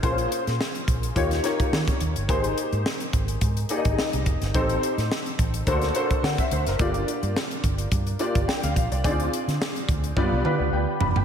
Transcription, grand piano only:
0.02 A#3 C#4 F4 G#4 C5
1.15 A#3 D#4 F4 G4 C#5
1.43 A#3 D#4 F4 G4 C#5
2.28 A#3 D#4 G4 G#4 C5
3.70 A#3 D#4 G4 G#4 D5
3.78 D#5
4.54 C4 D#4 G4 A4 C5
5.67 A#3 D4 F#4 A4 C5
5.95 A#3 D4 F#4 A4 C5
6.24 F#5
6.39 E5
6.52 C5
6.68 A#4
6.80 A3 D4 F4 G4 D5
6.86 A#3
8.19 A#3 D4 F4 G4 D5
8.48 G5
8.64 F5
8.92 D5
9.04 C4 D4 D#4 G#4 D5
9.11 F4
10.16 B3 D4 F4 G4 D5
10.44 B3 D4 F4 G4 B4
10.73 G5
11.01 B5
11.16 G5

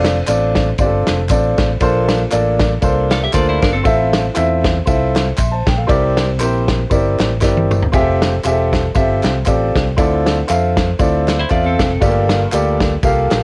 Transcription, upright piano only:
Already playing: C4 D4 F4 A4 D5
0.27 C4 D4 F4 A4 D5
0.79 C4 D4 F4 G4 D5
0.86 A4
1.30 C4 D4 F4 A4 D5
1.80 A#2 A#3 D4 F4 A4 C5
2.30 A#3 D4 F4 A4 D5
2.81 A#3 D4 F4 A4 C5
3.32 A#3 D4 F4 A4 C5
3.83 A2 C4 E4 F4 A4 E5
4.34 C4 E4 F4 A4 E5
4.86 C4 E4 F4 A4 E5
5.38 E5 C6
5.51 C5 A5
5.66 G5
5.77 A4 F5
5.87 C3 C4 E4 G4 A#4 D5
6.39 C4 E4 G4 A#4 C5
6.90 C4 E4 G4 A#4 D5
7.41 C4 E4 G4 A#4 D5
7.92 C4 F4 G4 G#4 E5
8.00 A4
8.44 C4 F4 G4 G#4 E5
8.51 A4
8.94 C4 F4 G4 A4 E5
9.46 C4 F4 G4 A4 D5
9.96 D3 C4 E4 F4 A4 D5
10.47 C4 F4 A4 E5 F5
10.99 C4 E4 F4 A4 D5
11.49 C4 F4 A4 E5 F5
12.00 G2 A3 F4 G4 A4 D5
12.07 A#3
12.52 A#3 F4 G4 A4 D5
13.04 A#3 F4 G4 A4 F5

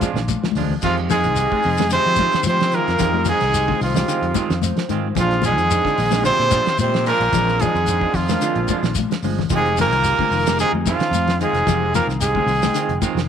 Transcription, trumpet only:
Already playing: F4
0.84 F4
1.11 G#4
1.93 C5
2.49 C5
2.75 A#4
3.29 G#4
3.83 F4
5.20 F4
5.46 G#4
6.26 C5
6.80 C5
7.08 A#4
7.61 G#4
8.15 F4
9.56 G#4
9.81 A#4
10.61 G#4
10.87 F4
11.44 G#4
11.95 A#4
12.22 G#4

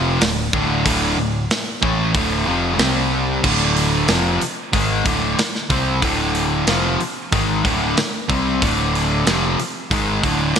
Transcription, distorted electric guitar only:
Already playing: F2 C3 F3
0.22 D2 A2
0.53 D2 A2 D3
0.85 D2 A2 D3
1.18 D2 A2
1.82 A2 E3 A3
2.14 D2 A2 D3
2.46 F2 C3 F3
2.79 C3 G3 C4
3.42 D2 A2 D3
4.08 F2 C3 F3
4.40 muted distorted electric guitar stroke
4.72 G#2 D#3 G#3
5.05 D2 A2 D3
5.38 muted distorted electric guitar stroke
5.69 C3 G3 C4
6.02 D2 A2 D3
6.67 F2 C3 F3
6.99 muted distorted electric guitar stroke
7.32 G#2 D#3 G#3
7.64 D2 A2 D3
7.97 muted distorted electric guitar stroke
8.28 C3 G3 C4
8.62 D2 A2 D3
9.26 F2 C3 F3
9.58 muted distorted electric guitar stroke
9.91 G#2 D#3 G#3
10.23 D2 A2 D3
10.55 muted distorted electric guitar stroke

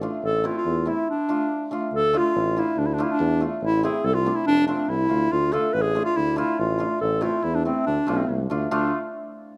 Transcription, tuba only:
0.22 A1
0.65 E2
1.92 D2
2.35 A1
2.77 D2
3.20 E2
3.62 A1
4.04 C2
4.46 F1
4.89 C2
5.10 D2
5.32 D2
5.74 A1
6.16 D2
6.59 A1
7.02 A1
7.44 E2
7.87 D2
8.07 B1
8.29 C2
8.50 D2
8.71 D2

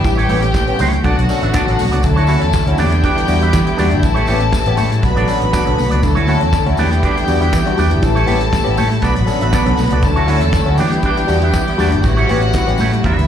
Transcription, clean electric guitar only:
0.04 muted clean electric guitar stroke
0.17 A3 E4 G4 C#5
0.28 A3 E4 G4 C#5
0.42 muted clean electric guitar stroke
0.68 muted clean electric guitar stroke
0.79 A3 E4 G4 C#5
0.93 muted clean electric guitar stroke
1.04 D4 F#4 A4 D5
1.18 muted clean electric guitar stroke
1.29 muted clean electric guitar stroke
1.42 D4 F#4 A4 E5
1.53 D4 F#4 A4 D5
1.67 muted clean electric guitar stroke
1.78 muted clean electric guitar stroke
1.91 D4 F#4 A4 D5
2.16 A3 E4 F#4 C#5
2.27 A3 E4 F#4 C#5
2.41 muted clean electric guitar stroke
2.67 muted clean electric guitar stroke
2.78 D4 G4 B4 D5
2.92 muted clean electric guitar stroke
3.03 D4 G4 B4 D5
3.17 muted clean electric guitar stroke
3.29 muted clean electric guitar stroke
3.42 D4 G4 B4 E5
3.67 muted clean electric guitar stroke
3.77 D4 G4 B4 D5
3.91 muted clean electric guitar stroke
4.03 muted clean electric guitar stroke
4.14 A3 E4 G4 C#5
4.26 A3 E4 G4 C#5
4.40 muted clean electric guitar stroke
4.66 muted clean electric guitar stroke
4.76 A3 E4 G4 C#5
4.90 muted clean electric guitar stroke
5.02 muted clean electric guitar stroke
5.16 D4 F#4 A4 D5
5.40 muted clean electric guitar stroke
5.52 D4 F#4 A4 D5
5.66 muted clean electric guitar stroke
5.78 muted clean electric guitar stroke
5.90 D4 F#4 A4 D5
6.02 muted clean electric guitar stroke
6.15 A3 E4 F#4 C#5
6.27 A3 E4 F#4 C#5
6.40 muted clean electric guitar stroke
6.66 muted clean electric guitar stroke
6.78 D4 G4 B4 D5
6.91 muted clean electric guitar stroke
7.03 D4 G4 B4 D5
7.16 muted clean electric guitar stroke
7.28 muted clean electric guitar stroke
7.41 D4 G4 B4 E5
7.66 muted clean electric guitar stroke
7.77 D4 G4 B4 D5
7.91 muted clean electric guitar stroke
8.03 muted clean electric guitar stroke
8.15 A3 E4 G4 C#5
8.27 A3 E4 G4 C#5
8.41 muted clean electric guitar stroke
8.66 muted clean electric guitar stroke
8.76 A3 E4 G4 C#5
8.90 muted clean electric guitar stroke
9.02 B3 F#4 A4 D5
9.16 muted clean electric guitar stroke
9.27 muted clean electric guitar stroke
9.41 B3 F#4 A4 E5
9.52 B3 F#4 A4 D5
9.67 muted clean electric guitar stroke
9.78 muted clean electric guitar stroke
9.92 B3 F#4 A4 D5
10.16 A3 E4 F#4 C#5
10.28 A3 E4 F#4 C#5
10.41 muted clean electric guitar stroke
10.67 muted clean electric guitar stroke
10.78 D4 G4 B4 D5
10.92 muted clean electric guitar stroke
11.05 D4 G4 B4 D5
11.18 muted clean electric guitar stroke
11.29 muted clean electric guitar stroke
11.43 D4 G4 B4 E5
11.68 muted clean electric guitar stroke
11.78 D4 G4 B4 D5
11.92 muted clean electric guitar stroke
12.04 muted clean electric guitar stroke
12.17 A3 E4 G4 C#5
12.29 A3 E4 G4 C#5
12.42 muted clean electric guitar stroke
12.68 muted clean electric guitar stroke
12.79 A3 E4 G4 C#5
12.92 muted clean electric guitar stroke
13.04 G3 D4 F#4 B4
13.17 muted clean electric guitar stroke

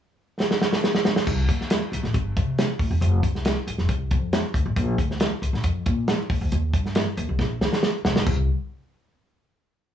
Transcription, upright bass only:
1.27 C2
1.48 D#2
1.92 C2
2.03 A1
2.14 G1
2.37 C3
2.79 A2
2.91 E1
3.01 F1
3.67 A1
3.78 F1
3.89 C2
4.11 F2
4.54 D2
4.66 A1
4.77 A#1
4.98 D2
5.42 C2
5.53 A#1
5.64 F2
5.86 A#2
6.30 D#2
6.41 D2
6.52 D#2
6.73 G2
7.17 D#2
7.29 C2
7.39 A#1
7.61 D#3
8.05 C3
8.16 B1
8.27 C2

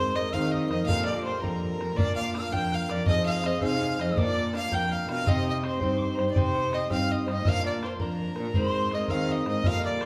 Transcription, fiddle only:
Already playing: C5
0.15 D#5
0.33 F5
0.51 D#5
0.69 D#5
0.86 F5
1.05 D5
1.24 C5
1.41 A#4
1.97 D5
2.16 F5
2.35 F5
2.52 G5
2.74 F5
2.91 D5
3.07 D#5
3.26 F5
3.46 D#5
3.64 F5
4.01 D#5
4.19 D5
4.56 F5
4.74 G5
4.87 G5
4.92 F5
5.11 F5
5.28 D#5
5.50 D#5
5.68 C5
5.85 C5
6.31 D5
6.38 C5
6.74 D#5
6.92 F5
7.12 D#5
7.30 D#5
7.48 F5
7.66 D5
7.85 C5
8.03 A#4
8.57 C5
8.94 D#5
9.10 F5
9.32 D#5
9.48 D#5
9.67 F5
9.85 D5

